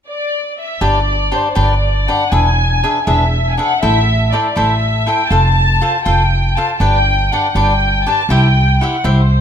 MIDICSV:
0, 0, Header, 1, 4, 480
1, 0, Start_track
1, 0, Key_signature, 1, "major"
1, 0, Tempo, 498753
1, 796, Time_signature, 6, 3, 24, 8
1, 9054, End_track
2, 0, Start_track
2, 0, Title_t, "Violin section"
2, 0, Program_c, 0, 48
2, 82, Note_on_c, 0, 74, 60
2, 536, Note_off_c, 0, 74, 0
2, 576, Note_on_c, 0, 76, 61
2, 786, Note_off_c, 0, 76, 0
2, 800, Note_on_c, 0, 74, 71
2, 1278, Note_on_c, 0, 72, 57
2, 1292, Note_off_c, 0, 74, 0
2, 1507, Note_on_c, 0, 74, 58
2, 1515, Note_off_c, 0, 72, 0
2, 2007, Note_off_c, 0, 74, 0
2, 2017, Note_on_c, 0, 78, 67
2, 2245, Note_off_c, 0, 78, 0
2, 2245, Note_on_c, 0, 80, 74
2, 2927, Note_off_c, 0, 80, 0
2, 2976, Note_on_c, 0, 76, 61
2, 3382, Note_on_c, 0, 80, 45
2, 3404, Note_off_c, 0, 76, 0
2, 3447, Note_off_c, 0, 80, 0
2, 3454, Note_on_c, 0, 78, 76
2, 3676, Note_on_c, 0, 76, 81
2, 3683, Note_off_c, 0, 78, 0
2, 4134, Note_off_c, 0, 76, 0
2, 4155, Note_on_c, 0, 74, 56
2, 4391, Note_off_c, 0, 74, 0
2, 4403, Note_on_c, 0, 76, 66
2, 4888, Note_off_c, 0, 76, 0
2, 4889, Note_on_c, 0, 79, 72
2, 5102, Note_on_c, 0, 81, 81
2, 5116, Note_off_c, 0, 79, 0
2, 5828, Note_off_c, 0, 81, 0
2, 5833, Note_on_c, 0, 79, 62
2, 6291, Note_off_c, 0, 79, 0
2, 6326, Note_on_c, 0, 81, 70
2, 6469, Note_off_c, 0, 81, 0
2, 6481, Note_on_c, 0, 81, 40
2, 6551, Note_off_c, 0, 81, 0
2, 6551, Note_on_c, 0, 79, 81
2, 7046, Note_off_c, 0, 79, 0
2, 7053, Note_on_c, 0, 78, 59
2, 7268, Note_on_c, 0, 79, 67
2, 7281, Note_off_c, 0, 78, 0
2, 7764, Note_off_c, 0, 79, 0
2, 7765, Note_on_c, 0, 81, 74
2, 7996, Note_off_c, 0, 81, 0
2, 8007, Note_on_c, 0, 79, 69
2, 8457, Note_off_c, 0, 79, 0
2, 8484, Note_on_c, 0, 78, 57
2, 8712, Note_off_c, 0, 78, 0
2, 8715, Note_on_c, 0, 72, 64
2, 9054, Note_off_c, 0, 72, 0
2, 9054, End_track
3, 0, Start_track
3, 0, Title_t, "Cavaquinho"
3, 0, Program_c, 1, 24
3, 780, Note_on_c, 1, 62, 56
3, 782, Note_on_c, 1, 67, 64
3, 788, Note_on_c, 1, 71, 65
3, 788, Note_on_c, 1, 74, 67
3, 946, Note_off_c, 1, 62, 0
3, 947, Note_off_c, 1, 67, 0
3, 950, Note_off_c, 1, 71, 0
3, 950, Note_off_c, 1, 74, 0
3, 1266, Note_on_c, 1, 62, 50
3, 1270, Note_on_c, 1, 67, 50
3, 1272, Note_on_c, 1, 71, 41
3, 1281, Note_on_c, 1, 74, 46
3, 1416, Note_off_c, 1, 62, 0
3, 1418, Note_off_c, 1, 67, 0
3, 1420, Note_off_c, 1, 71, 0
3, 1424, Note_off_c, 1, 74, 0
3, 1494, Note_on_c, 1, 62, 60
3, 1495, Note_on_c, 1, 67, 66
3, 1501, Note_on_c, 1, 74, 65
3, 1503, Note_on_c, 1, 71, 69
3, 1665, Note_off_c, 1, 62, 0
3, 1666, Note_off_c, 1, 67, 0
3, 1669, Note_off_c, 1, 74, 0
3, 1670, Note_off_c, 1, 71, 0
3, 2003, Note_on_c, 1, 62, 45
3, 2005, Note_on_c, 1, 67, 48
3, 2010, Note_on_c, 1, 71, 55
3, 2018, Note_on_c, 1, 74, 49
3, 2146, Note_off_c, 1, 62, 0
3, 2147, Note_off_c, 1, 67, 0
3, 2150, Note_off_c, 1, 71, 0
3, 2153, Note_off_c, 1, 74, 0
3, 2229, Note_on_c, 1, 62, 52
3, 2232, Note_on_c, 1, 68, 61
3, 2237, Note_on_c, 1, 71, 62
3, 2239, Note_on_c, 1, 76, 64
3, 2393, Note_off_c, 1, 62, 0
3, 2395, Note_off_c, 1, 68, 0
3, 2397, Note_off_c, 1, 71, 0
3, 2398, Note_off_c, 1, 76, 0
3, 2729, Note_on_c, 1, 62, 46
3, 2732, Note_on_c, 1, 68, 51
3, 2732, Note_on_c, 1, 71, 48
3, 2739, Note_on_c, 1, 76, 56
3, 2869, Note_off_c, 1, 62, 0
3, 2871, Note_off_c, 1, 68, 0
3, 2871, Note_off_c, 1, 71, 0
3, 2874, Note_off_c, 1, 76, 0
3, 2953, Note_on_c, 1, 62, 59
3, 2955, Note_on_c, 1, 68, 62
3, 2961, Note_on_c, 1, 71, 53
3, 2961, Note_on_c, 1, 76, 65
3, 3116, Note_off_c, 1, 62, 0
3, 3117, Note_off_c, 1, 68, 0
3, 3120, Note_off_c, 1, 71, 0
3, 3120, Note_off_c, 1, 76, 0
3, 3441, Note_on_c, 1, 62, 51
3, 3445, Note_on_c, 1, 68, 44
3, 3455, Note_on_c, 1, 76, 63
3, 3456, Note_on_c, 1, 71, 54
3, 3585, Note_off_c, 1, 62, 0
3, 3587, Note_off_c, 1, 68, 0
3, 3592, Note_off_c, 1, 76, 0
3, 3593, Note_off_c, 1, 71, 0
3, 3681, Note_on_c, 1, 64, 70
3, 3681, Note_on_c, 1, 69, 62
3, 3683, Note_on_c, 1, 72, 63
3, 3693, Note_on_c, 1, 76, 64
3, 3839, Note_off_c, 1, 64, 0
3, 3839, Note_off_c, 1, 69, 0
3, 3840, Note_off_c, 1, 72, 0
3, 3845, Note_off_c, 1, 76, 0
3, 4162, Note_on_c, 1, 64, 49
3, 4170, Note_on_c, 1, 69, 50
3, 4171, Note_on_c, 1, 72, 54
3, 4179, Note_on_c, 1, 76, 49
3, 4304, Note_off_c, 1, 64, 0
3, 4307, Note_off_c, 1, 69, 0
3, 4308, Note_off_c, 1, 72, 0
3, 4312, Note_off_c, 1, 76, 0
3, 4386, Note_on_c, 1, 64, 60
3, 4397, Note_on_c, 1, 69, 62
3, 4398, Note_on_c, 1, 72, 75
3, 4401, Note_on_c, 1, 76, 64
3, 4548, Note_off_c, 1, 64, 0
3, 4554, Note_off_c, 1, 69, 0
3, 4554, Note_off_c, 1, 72, 0
3, 4556, Note_off_c, 1, 76, 0
3, 4874, Note_on_c, 1, 64, 43
3, 4881, Note_on_c, 1, 69, 53
3, 4889, Note_on_c, 1, 72, 50
3, 4895, Note_on_c, 1, 76, 53
3, 5017, Note_off_c, 1, 64, 0
3, 5021, Note_off_c, 1, 69, 0
3, 5025, Note_off_c, 1, 72, 0
3, 5027, Note_off_c, 1, 76, 0
3, 5105, Note_on_c, 1, 65, 51
3, 5114, Note_on_c, 1, 69, 55
3, 5118, Note_on_c, 1, 77, 68
3, 5119, Note_on_c, 1, 72, 60
3, 5266, Note_off_c, 1, 65, 0
3, 5271, Note_off_c, 1, 69, 0
3, 5273, Note_off_c, 1, 72, 0
3, 5273, Note_off_c, 1, 77, 0
3, 5595, Note_on_c, 1, 65, 50
3, 5601, Note_on_c, 1, 69, 56
3, 5604, Note_on_c, 1, 72, 47
3, 5609, Note_on_c, 1, 77, 54
3, 5737, Note_off_c, 1, 65, 0
3, 5740, Note_off_c, 1, 69, 0
3, 5742, Note_off_c, 1, 72, 0
3, 5744, Note_off_c, 1, 77, 0
3, 5826, Note_on_c, 1, 65, 54
3, 5830, Note_on_c, 1, 72, 66
3, 5831, Note_on_c, 1, 69, 56
3, 5835, Note_on_c, 1, 77, 69
3, 5988, Note_off_c, 1, 65, 0
3, 5990, Note_off_c, 1, 69, 0
3, 5990, Note_off_c, 1, 72, 0
3, 5992, Note_off_c, 1, 77, 0
3, 6323, Note_on_c, 1, 65, 48
3, 6328, Note_on_c, 1, 69, 43
3, 6332, Note_on_c, 1, 72, 50
3, 6336, Note_on_c, 1, 77, 51
3, 6463, Note_off_c, 1, 65, 0
3, 6465, Note_off_c, 1, 69, 0
3, 6467, Note_off_c, 1, 72, 0
3, 6469, Note_off_c, 1, 77, 0
3, 6545, Note_on_c, 1, 62, 52
3, 6552, Note_on_c, 1, 67, 54
3, 6554, Note_on_c, 1, 71, 64
3, 6559, Note_on_c, 1, 74, 58
3, 6708, Note_off_c, 1, 62, 0
3, 6712, Note_off_c, 1, 67, 0
3, 6713, Note_off_c, 1, 71, 0
3, 6715, Note_off_c, 1, 74, 0
3, 7049, Note_on_c, 1, 62, 52
3, 7052, Note_on_c, 1, 67, 52
3, 7058, Note_on_c, 1, 71, 50
3, 7061, Note_on_c, 1, 74, 49
3, 7187, Note_off_c, 1, 62, 0
3, 7188, Note_off_c, 1, 67, 0
3, 7191, Note_off_c, 1, 71, 0
3, 7193, Note_off_c, 1, 74, 0
3, 7270, Note_on_c, 1, 62, 61
3, 7272, Note_on_c, 1, 67, 53
3, 7275, Note_on_c, 1, 71, 63
3, 7283, Note_on_c, 1, 74, 62
3, 7432, Note_off_c, 1, 62, 0
3, 7433, Note_off_c, 1, 67, 0
3, 7434, Note_off_c, 1, 71, 0
3, 7438, Note_off_c, 1, 74, 0
3, 7762, Note_on_c, 1, 62, 51
3, 7762, Note_on_c, 1, 67, 51
3, 7769, Note_on_c, 1, 71, 51
3, 7776, Note_on_c, 1, 74, 51
3, 7903, Note_off_c, 1, 62, 0
3, 7903, Note_off_c, 1, 67, 0
3, 7907, Note_off_c, 1, 71, 0
3, 7910, Note_off_c, 1, 74, 0
3, 7989, Note_on_c, 1, 67, 58
3, 7990, Note_on_c, 1, 64, 73
3, 7999, Note_on_c, 1, 72, 65
3, 8001, Note_on_c, 1, 76, 66
3, 8150, Note_off_c, 1, 67, 0
3, 8151, Note_off_c, 1, 64, 0
3, 8155, Note_off_c, 1, 72, 0
3, 8156, Note_off_c, 1, 76, 0
3, 8481, Note_on_c, 1, 64, 50
3, 8490, Note_on_c, 1, 67, 44
3, 8495, Note_on_c, 1, 72, 55
3, 8501, Note_on_c, 1, 76, 63
3, 8620, Note_off_c, 1, 64, 0
3, 8625, Note_off_c, 1, 67, 0
3, 8627, Note_off_c, 1, 72, 0
3, 8630, Note_off_c, 1, 76, 0
3, 8703, Note_on_c, 1, 64, 60
3, 8707, Note_on_c, 1, 67, 69
3, 8710, Note_on_c, 1, 76, 72
3, 8711, Note_on_c, 1, 72, 65
3, 8864, Note_off_c, 1, 64, 0
3, 8866, Note_off_c, 1, 67, 0
3, 8867, Note_off_c, 1, 76, 0
3, 8868, Note_off_c, 1, 72, 0
3, 9054, End_track
4, 0, Start_track
4, 0, Title_t, "Upright bass"
4, 0, Program_c, 2, 32
4, 781, Note_on_c, 2, 31, 73
4, 1257, Note_off_c, 2, 31, 0
4, 1507, Note_on_c, 2, 31, 69
4, 1981, Note_off_c, 2, 31, 0
4, 2232, Note_on_c, 2, 28, 77
4, 2704, Note_off_c, 2, 28, 0
4, 2956, Note_on_c, 2, 28, 77
4, 3426, Note_off_c, 2, 28, 0
4, 3686, Note_on_c, 2, 33, 86
4, 4150, Note_off_c, 2, 33, 0
4, 4393, Note_on_c, 2, 33, 85
4, 4860, Note_off_c, 2, 33, 0
4, 5106, Note_on_c, 2, 29, 78
4, 5576, Note_off_c, 2, 29, 0
4, 5830, Note_on_c, 2, 29, 67
4, 6301, Note_off_c, 2, 29, 0
4, 6545, Note_on_c, 2, 31, 74
4, 7018, Note_off_c, 2, 31, 0
4, 7266, Note_on_c, 2, 31, 70
4, 7738, Note_off_c, 2, 31, 0
4, 7976, Note_on_c, 2, 36, 81
4, 8448, Note_off_c, 2, 36, 0
4, 8704, Note_on_c, 2, 36, 78
4, 9054, Note_off_c, 2, 36, 0
4, 9054, End_track
0, 0, End_of_file